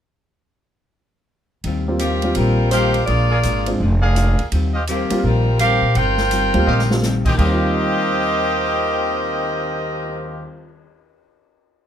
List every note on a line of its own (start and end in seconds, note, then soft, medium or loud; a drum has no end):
1.64 2.32 D#2 medium
1.64 1.88 D#3 medium
1.64 1.89 G3 soft
1.64 1.90 C4 soft
1.64 1.90 F4 medium
1.64 ride soft
1.88 1.99 G3 medium
1.88 1.99 A#3 soft
1.88 2.00 C4 medium
1.88 2.00 F4 medium
1.99 2.24 D#3 medium
1.99 2.33 F3 medium
1.99 2.25 G3 soft
1.99 2.33 A#3 medium
1.99 2.33 C4 medium
1.99 2.25 C4 soft
1.99 2.25 F4 medium
1.99 2.34 G4 medium
1.99 hi-hat pedal soft
1.99 ride medium
2.22 2.70 G3 medium
2.22 2.70 A#3 soft
2.22 2.70 C4 medium
2.22 2.70 F4 medium
2.22 ride soft
2.35 3.04 A#1 medium
2.35 2.60 D#3 soft
2.35 2.72 G3 medium
2.35 2.60 G3 soft
2.35 2.72 C4 medium
2.35 2.61 C4 soft
2.35 2.71 F4 medium
2.35 2.72 A#4 medium
2.35 ride medium
2.39 2.61 F4 soft
2.71 2.96 D#3 medium
2.71 2.97 G3 medium
2.71 3.05 A#3 medium
2.71 2.97 C4 medium
2.71 3.05 F4 medium
2.71 2.97 F4 medium
2.71 3.07 G4 medium
2.71 3.05 G4 medium
2.71 3.08 C5 medium
2.71 3.05 C5 medium
2.71 3.07 D#5 medium
2.71 3.07 F5 medium
2.71 hi-hat pedal medium
2.71 ride medium
2.94 ride soft
3.06 3.41 A#1 medium
3.06 3.32 A#2 soft
3.06 3.32 G#3 soft
3.06 3.75 A#3 medium
3.06 3.33 D4 soft
3.06 3.75 F4 medium
3.06 3.75 G#4 medium
3.06 3.75 D5 medium
3.06 ride soft
3.11 3.33 F4 medium
3.30 3.39 G#4 medium
3.30 3.39 A#4 medium
3.30 3.39 D5 medium
3.30 3.39 F5 medium
3.43 3.77 G#1 medium
3.43 3.68 A#2 medium
3.43 3.68 G#3 medium
3.43 3.69 D4 medium
3.43 3.69 F4 medium
3.43 hi-hat pedal soft
3.43 ride medium
3.66 3.79 G#3 soft
3.66 3.79 C4 soft
3.66 3.79 D4 soft
3.66 3.79 F4 medium
3.66 ride medium
3.80 4.34 F1 medium
3.80 4.04 A#2 medium
3.80 4.04 G#3 soft
3.80 4.05 D4 soft
3.80 4.05 F4 medium
4.01 4.48 G#4 medium
4.01 4.48 A#4 medium
4.01 4.48 D5 medium
4.01 4.48 F5 medium
4.15 4.39 A#2 medium
4.15 4.40 G#3 medium
4.15 4.40 D4 medium
4.15 4.40 F4 medium
4.15 hi-hat pedal soft
4.15 ride medium
4.39 ride soft
4.52 5.06 D#2 medium
4.52 4.76 D#3 medium
4.52 4.76 G3 medium
4.52 4.77 C4 medium
4.52 4.77 F4 medium
4.52 ride medium
4.74 4.83 G4 medium
4.74 4.83 C5 medium
4.74 4.83 D#5 medium
4.74 4.83 F5 medium
4.87 5.12 D#3 soft
4.87 5.22 F3 medium
4.87 5.12 G3 soft
4.87 5.22 A#3 medium
4.87 5.21 C4 medium
4.87 5.12 C4 medium
4.87 5.13 F4 medium
4.87 5.22 G4 medium
4.87 hi-hat pedal medium
4.87 ride medium
5.10 5.22 G3 medium
5.10 5.22 A#3 medium
5.10 5.22 C4 medium
5.10 5.23 F4 medium
5.10 muted upright bass stroke soft
5.10 ride medium
5.23 5.78 A#1 medium
5.23 5.48 D#3 soft
5.23 5.48 G3 soft
5.23 5.60 G3 medium
5.23 5.59 C4 medium
5.23 5.48 C4 soft
5.23 5.60 F4 medium
5.23 5.49 F4 soft
5.23 5.59 A#4 medium
5.59 5.83 D#3 medium
5.59 5.84 G3 medium
5.59 5.93 C4 medium
5.59 5.84 C4 medium
5.59 5.84 F4 medium
5.59 5.93 G4 medium
5.59 5.93 A#4 medium
5.59 5.93 F5 loud
5.59 hi-hat pedal soft
5.59 ride medium
5.82 5.94 A#2 medium
5.95 6.50 G1 medium
5.95 6.19 D#3 soft
5.95 6.20 G3 soft
5.95 6.20 C4 soft
5.95 7.03 F4 medium
5.95 6.21 F4 medium
5.95 7.03 A#4 medium
5.95 7.03 C5 medium
5.95 7.03 G5 loud
5.95 ride medium
6.18 snare soft
6.31 6.55 D#3 soft
6.31 6.56 G3 soft
6.31 6.56 C4 medium
6.31 6.56 F4 medium
6.31 hi-hat pedal medium
6.31 ride medium
6.54 6.66 D2 medium
6.54 6.65 G3 medium
6.54 6.66 A#3 medium
6.54 6.66 C4 medium
6.54 6.66 F4 medium
6.54 ride soft
6.67 7.35 A#1 medium
6.67 6.91 D#3 soft
6.67 6.91 G3 soft
6.67 6.92 C4 medium
6.67 6.92 F4 medium
6.67 6.82 G4 medium
6.67 6.82 C5 medium
6.67 6.82 D#5 medium
6.67 6.82 F5 medium
6.67 mid tom soft
6.79 snare medium
6.90 7.01 G3 soft
6.90 7.02 A#3 soft
6.90 7.02 C4 soft
6.90 7.02 F4 medium
6.90 snare medium
7.03 7.27 D#3 medium
7.03 7.27 G3 medium
7.03 7.27 C4 medium
7.03 7.28 F4 medium
7.03 snare medium
7.03 hi-hat pedal medium
7.25 10.39 D#2 medium
7.25 7.34 G4 medium
7.25 7.34 C5 medium
7.25 7.34 D#5 medium
7.25 7.34 G5 medium
7.25 kick medium
7.25 crash medium
7.34 10.46 D#3 soft
7.34 10.86 D#3 medium
7.34 10.50 G4 medium
7.34 10.50 C5 medium
7.34 10.50 D#5 medium
7.34 10.50 F5 medium
7.38 10.46 D#2 medium
7.38 10.52 G3 soft
7.38 10.91 G3 medium
7.38 10.48 C4 medium
7.38 10.48 G4 medium
7.38 10.47 A#4 medium
7.38 10.48 D#5 medium
7.38 kick soft
7.38 crash medium
7.45 10.95 C4 medium
7.45 10.58 C4 medium
7.45 10.98 F4 medium
7.53 10.65 F4 medium
7.61 cymbal swell soft